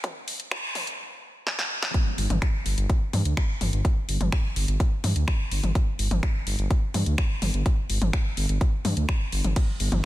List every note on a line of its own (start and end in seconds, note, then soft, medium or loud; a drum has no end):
0.04 kick loud
0.04 closed hi-hat medium
0.04 mid tom medium
0.28 open hi-hat loud
0.40 closed hi-hat medium
0.51 finger snap loud
0.51 kick loud
0.51 closed hi-hat medium
0.75 open hi-hat medium
0.75 mid tom medium
0.87 closed hi-hat medium
1.47 snare medium
1.59 snare medium
1.83 snare medium
1.94 kick loud
1.94 closed hi-hat medium
2.18 2.27 G1 loud
2.18 open hi-hat loud
2.30 2.39 G1 medium
2.30 closed hi-hat medium
2.30 mid tom medium
2.42 finger snap loud
2.42 kick loud
2.42 closed hi-hat medium
2.66 2.74 G1 medium
2.66 open hi-hat medium
2.78 2.86 G1 medium
2.78 closed hi-hat medium
2.90 kick loud
2.90 closed hi-hat medium
3.13 3.22 G2 loud
3.13 open hi-hat loud
3.13 mid tom medium
3.25 3.34 D2 medium
3.25 closed hi-hat medium
3.37 finger snap loud
3.37 kick loud
3.37 closed hi-hat medium
3.61 3.70 G1 loud
3.61 open hi-hat medium
3.61 mid tom medium
3.73 3.82 G1 medium
3.73 closed hi-hat medium
3.85 kick loud
3.85 closed hi-hat medium
4.09 4.17 G1 medium
4.09 open hi-hat loud
4.21 4.29 G1 medium
4.21 closed hi-hat medium
4.21 mid tom medium
4.32 finger snap loud
4.32 kick loud
4.32 closed hi-hat medium
4.56 4.65 G1 medium
4.56 open hi-hat loud
4.68 4.77 G1 medium
4.68 closed hi-hat medium
4.80 kick loud
4.80 closed hi-hat medium
5.04 5.13 G2 medium
5.04 open hi-hat loud
5.04 mid tom medium
5.16 5.24 D2 medium
5.16 closed hi-hat medium
5.28 finger snap loud
5.28 kick loud
5.28 closed hi-hat medium
5.51 5.60 G1 loud
5.51 open hi-hat loud
5.63 5.72 G1 medium
5.63 closed hi-hat medium
5.63 mid tom medium
5.75 kick loud
5.75 closed hi-hat medium
5.99 6.08 G1 loud
5.99 open hi-hat loud
6.11 6.20 G1 medium
6.11 closed hi-hat medium
6.11 mid tom medium
6.23 finger snap loud
6.23 kick loud
6.23 closed hi-hat medium
6.47 6.55 G1 medium
6.47 open hi-hat loud
6.59 6.67 G1 medium
6.59 closed hi-hat medium
6.71 kick loud
6.71 closed hi-hat medium
6.94 7.03 G2 loud
6.94 open hi-hat loud
6.94 mid tom medium
7.06 7.15 D2 medium
7.06 closed hi-hat medium
7.18 finger snap loud
7.18 kick loud
7.18 closed hi-hat medium
7.42 7.51 G1 loud
7.42 open hi-hat loud
7.42 mid tom medium
7.54 7.63 G1 medium
7.54 closed hi-hat medium
7.66 kick loud
7.66 closed hi-hat medium
7.90 7.98 G1 loud
7.90 open hi-hat loud
8.02 8.10 G1 medium
8.02 closed hi-hat medium
8.02 mid tom medium
8.13 finger snap loud
8.13 kick loud
8.13 closed hi-hat medium
8.37 8.46 G1 medium
8.37 open hi-hat loud
8.49 8.58 G1 medium
8.49 closed hi-hat medium
8.61 kick loud
8.61 closed hi-hat medium
8.85 8.94 G2 loud
8.85 open hi-hat loud
8.85 mid tom loud
8.97 9.05 D2 medium
8.97 closed hi-hat medium
9.09 finger snap loud
9.09 kick loud
9.09 closed hi-hat medium
9.32 9.41 G1 medium
9.32 open hi-hat loud
9.44 9.53 G1 medium
9.44 closed hi-hat medium
9.44 mid tom medium
9.56 kick loud
9.56 closed hi-hat medium
9.56 ride medium
9.80 9.89 G1 loud
9.80 open hi-hat loud
9.92 10.01 G1 medium
9.92 closed hi-hat medium
9.92 mid tom loud